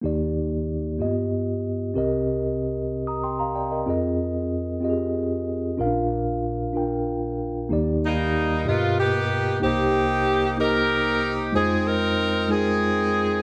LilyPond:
<<
  \new Staff \with { instrumentName = "Tine electric piano" } { \time 6/8 \key ees \major \tempo 4. = 63 << { r2. | r4. r16 <bes'' ees'''>16 <g'' c'''>16 <f'' bes''>16 <d'' g''>16 <bes' ees''>16~ | <bes' ees''>16 r2 r8. | r2. |
r2. | r2. | r2. | } \\ { <bes ees' g' d''>4 r8 <bes b f' g' dis''>4 r8 | <c' g' bes' ees''>4 r2 | <c' f' aes' ees''>4 r8 <c' f' g' aes' ees''>4 r8 | <des' d' f' bes' f''>4 r8 <d' f' bes' g''>4 r8 |
<bes ees' g' d''>4 r8 <b, f' g' dis''>4 r8 | <bes ees' g' c''>4 r8 <bes ees' g' ees''>4 r8 | <aes ees' f' c''>4 r8 <aes ees' f' bes'>4 r8 | } >> }
  \new Staff \with { instrumentName = "Tine electric piano" } { \clef bass \time 6/8 \key ees \major <ees, ees>4. g,4. | <c, c>2. | f,2. | <bes,, bes,>2. |
<ees, ees>4. g,4. | <c, c>2. | f,2. | }
  \new Staff \with { instrumentName = "Saxophone section" } { \time 6/8 \key ees \major << { r2. | r2. | r2. | r2. |
r8 ees'4 f'8 g'4 | g'4. bes'4 r8 | aes'8 bes'4 aes'4. | } \\ { r2. | r2. | r2. | r2. |
r8 <g bes>4 <ais b>8 <ais b>4 | <bes ees'>4. <ees' g'>4. | <c' ees'>8 ees'4 <c' ees'>4. | } >> }
>>